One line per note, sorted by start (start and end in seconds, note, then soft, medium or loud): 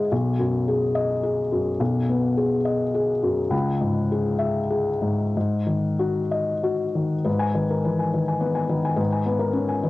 0.00 0.13 G#2 medium
0.00 0.11 G#3 soft
0.00 0.13 B3 soft
0.00 0.14 G#4 soft
0.00 0.13 E5 soft
0.00 0.14 B5 soft
0.00 0.13 G#6 soft
0.12 1.76 B1 medium
0.39 0.84 F#2 soft
0.68 1.12 G#4 soft
0.95 1.40 D#5 soft
1.23 1.69 G#4 soft
1.52 1.97 F#2 soft
1.80 3.48 B1 medium
2.09 2.55 B3 soft
2.37 2.83 G#4 soft
2.65 3.11 D#5 soft
2.94 3.40 G#4 soft
3.23 3.52 F#2 soft
3.50 5.30 C#2 medium
3.81 4.28 G#2 soft
4.12 4.59 G#4 soft
4.38 4.88 E5 soft
4.70 5.22 G#4 soft
5.02 5.35 G#2 soft
5.37 7.23 G#2 soft
5.67 6.19 D#3 soft
5.99 6.51 F#4 soft
6.31 6.83 D#5 soft
6.63 7.14 F#4 soft
6.95 7.26 D#3 soft
7.25 8.95 G#2 soft
7.25 7.49 B4 soft
7.39 7.64 G#5 medium
7.55 8.02 D#3 soft
7.55 7.79 B4 soft
7.71 7.85 A#4 soft
7.85 8.14 E3 soft
7.85 8.08 B4 soft
7.99 8.22 G#5 soft
8.13 8.59 D#3 soft
8.13 8.36 B4 soft
8.28 8.51 G#5 soft
8.41 8.87 B3 soft
8.41 8.64 B4 soft
8.55 8.79 G#5 soft
8.69 9.15 D#3 soft
8.69 8.93 B4 soft
8.85 9.08 G#5 soft
8.96 9.90 G#2 soft
8.96 9.20 B4 soft
9.12 9.35 G#5 soft
9.26 9.71 B3 soft
9.26 9.49 B4 soft
9.39 9.54 A#4 soft
9.53 9.82 C#4 soft
9.53 9.76 B4 soft
9.69 9.90 G#5 soft
9.83 9.90 D#3 soft
9.83 9.90 B4 soft